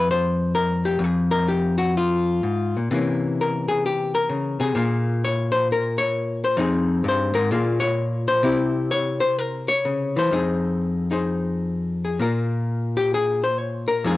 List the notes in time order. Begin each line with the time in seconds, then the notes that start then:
Already playing: F2 G#3
0.11 C5
0.55 A#4
0.85 G4
0.99 F2
1.04 G#4
1.31 A#4
1.48 G4
1.78 F#4
1.97 F4
2.43 G#2
2.77 A#2
2.91 C3 E3 A#3 C#4
3.41 A#4
3.69 G#4
3.86 G4
4.15 A#4
4.29 C#3
4.60 C3 G#4
4.75 A#2 A#3 F4
5.25 C#5
5.52 C5
5.72 A#4
5.98 C#5
6.44 C5
6.57 F2 C4 D#4 G#4
7.04 G2
7.08 C5
7.34 G#2 A#4
7.51 A#2 A#3 F4 G#4
7.80 C#5
8.28 C5
8.43 C3 C4 E4 G4
8.91 C#5
9.20 C5
9.39 A#4
9.68 C#5
9.85 C#3
10.16 E3 C5
10.31 F2 C4 D#4 G#4
11.11 D#4 G#4 C5
12.05 G#4
12.19 A#2 A#3 F4 A#4
12.97 G4
13.14 G#4
13.44 C5
13.59 C#5
13.88 A#4
14.04 F2 F3 G#3 D#4 G#4